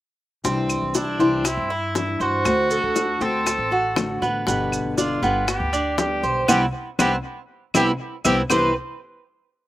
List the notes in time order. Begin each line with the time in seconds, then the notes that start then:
0.44 C2 C3 E3 G3 C4 D4 E4, high bongo, maracas
0.70 claves, maracas
0.82 C2
0.94 D4 E4, high bongo, maracas
1.19 C2 E3 G3 C4 D4 E4, maracas
1.45 E4, muted nylon-string guitar stroke, high bongo, claves, maracas
1.57 G2
1.70 E4
1.95 E3 G3 D4 E4, high bongo, low bongo, maracas
2.20 G2 F#4 C5, maracas
2.45 D2 D3 A3 C4 F#4, high bongo, claves, maracas
2.71 A4, maracas
2.83 D2
2.96 high bongo, maracas
3.21 D2 A3 C4 F#4 A4, high bongo, maracas
3.46 muted nylon-string guitar stroke, high bongo, claves, maracas
3.58 A1
3.72 F#4, high bongo
3.96 D3 A3 C4 F#4, high bongo, low bongo, claves, maracas
4.22 A1 B3, high bongo, maracas
4.47 G1 B2 D3 G3 B3 G4, high bongo, maracas
4.72 claves, maracas
4.85 G1
4.98 D4 F4, high bongo, maracas
5.22 G1 D3 G3 B3 G4, maracas
5.48 G4, muted nylon-string guitar stroke, high bongo, claves, maracas
5.60 D2
5.73 D4, maracas
5.98 D3 G3 B3 G4, high bongo, low bongo, maracas
6.23 B1 C5, maracas
6.48 C2 G3 B3 C4 E4 G4, low bongo, claves, maracas
6.99 C2 G3 B3 C4 E4 G4, low bongo, claves, maracas
7.74 C2 G3 B3 C4 E4 G4, low bongo, claves, maracas
8.25 C2 G3 B3 C4 E4 G4, low bongo, claves, maracas
8.50 C2 C3 E3 G3 B3 C4 E4 G4 B4 C5, low bongo, claves, maracas